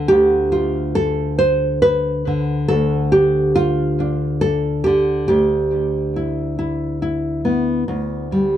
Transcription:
nylon-string guitar
Already playing: D2 D3 G3 A4
0.08 D2 G4
0.52 F4
0.95 A4
1.39 C5
1.82 B4
2.27 D3
2.68 D2 A4
3.12 G4
3.56 F4
4.00 D4
4.41 A4
4.84 D3 G4
5.28 D2 G4
6.16 E4
6.59 E4
7.02 E4
7.45 B3
7.88 D2
8.32 G3

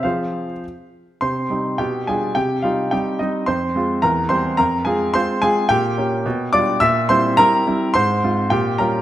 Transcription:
grand piano
0.03 F3 C4 G#4 C5 F5
1.21 C3 C5 C6
1.50 G3 C4 D#4
1.78 B2 G4 G5
2.07 G3 D4 F4 G#4 G#5
2.35 C3 G4 G5
2.62 G3 C4 D#4 F4 F5
2.91 G3 C4 D#4 G4 G5
3.19 G3 C4 D#4 D#5
3.46 F2 C5 C6
3.76 G#3 C4 F4
4.02 E2 A#4 A#5
4.29 G3 C4 G4 C5 C6
4.57 F2 A#4 A#5
4.85 G#3 C4 F4 G#4 G#5
5.14 G#3 C4 F4 C5 C6
5.42 G#3 C4 F4 G#4 G#5
5.69 A#2 G4 G5
5.98 A#3 C#4 G4
6.26 B2
6.53 G3 D4 F4 D5 D6
6.80 A#2 E5 E6
7.09 G3 C4 E4 C5 C6
7.37 G3 C4 E4 A#4 A#5
7.67 G3 C4 E4
7.94 G#2 C5 C6
8.24 G#3 C4 F4
8.50 A#2 G4 G5
8.78 G3 C#4 F4 A#4 A#5

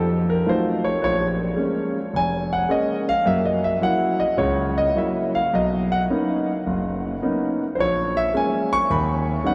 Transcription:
grand piano
Already playing: F2 A4
0.30 A#4
0.46 F#3 A3 D#4 F4 C5
0.84 C#5
1.02 A#1 C#5
1.56 G#3 A#3 C#4
2.14 F1 G#5
2.53 F#5
2.69 G#3 A#3 C#4 D#5
3.09 F5
3.25 F#2 A#3 E5
3.45 D#5
3.64 E5
3.81 F#3 A#3 E4 F#5
4.20 D#5
4.37 C#2 C#3 C#5
4.78 D#5
4.95 F#3 A#3 E4 E5
5.35 F5
5.53 B1 D#5
5.92 F#5
6.10 A#3 B3 C#4 D#4
6.67 F#1
7.22 A#3 B3 C#4 D#4
7.75 A#1 C5
7.80 C#5
8.17 E5
8.34 G#3 A#3 C#4 G#5
8.73 C#6
8.90 D#2 B5
9.44 G3 B3 C#4 D#4 F#5

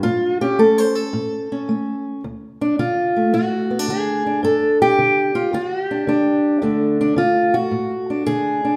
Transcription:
steel-string acoustic guitar
0.03 A2 F4
0.41 C#4 G4
0.59 A3 A4
0.78 C5
0.95 A4
1.13 A2
1.52 C#4
1.69 A3
2.24 D2
2.61 D4
2.79 D3 F4
3.16 A3
3.33 A2 F#4
3.70 B3
3.79 D4
3.88 D3 G#4
4.26 D4
4.43 G2 A4
4.82 G4
4.99 D3
5.35 F4
5.53 D3 F#4
5.84 G4
5.91 D4
6.07 D3 D4
6.62 D2 D3 A3 D4
7.01 D4
7.16 D3 F4
7.54 F#4
7.71 A2
8.10 D4
8.26 D3 G#4
8.65 D4

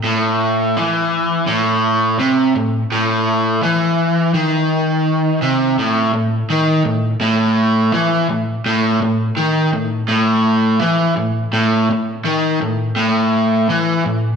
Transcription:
overdriven electric guitar
0.05 A2
0.77 E3
1.48 A2
2.19 C3
2.56 A2
2.92 A2
3.63 E3
4.35 D#3
5.42 C3
5.79 A2
6.14 A2
6.50 D#3
6.85 A2
7.21 A2
7.94 E3
8.30 A2
8.66 A2
9.01 A2
9.37 D#3
9.74 A2
10.09 A2
10.81 E3
11.17 A2
11.53 A2
11.90 A2
12.25 D#3
12.62 A2
12.96 A2
13.70 E3
14.06 A2

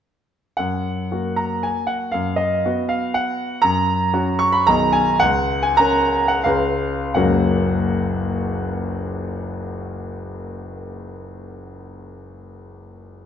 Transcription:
grand piano
0.57 F#2 F#5
1.11 A#3 F#4
1.36 A#5
1.63 G#5
1.87 F#5
2.12 F#2 F5
2.36 D#5
2.65 B3 F#4
2.89 F5
3.14 F#5
3.62 F#2 A#5
4.13 C#4 F#4
4.39 C#6
4.52 B5
4.67 B1 D#3 D#4 G#4 A#5
4.92 G#5
5.20 C#2 F#5
5.63 G#5
5.77 C#4 A#4 A#5
6.28 F#5
6.44 C#2 G#3 C#4 B4 F5
7.14 F#1 C#2 F#3 A#3 C#4 F#4 F#5

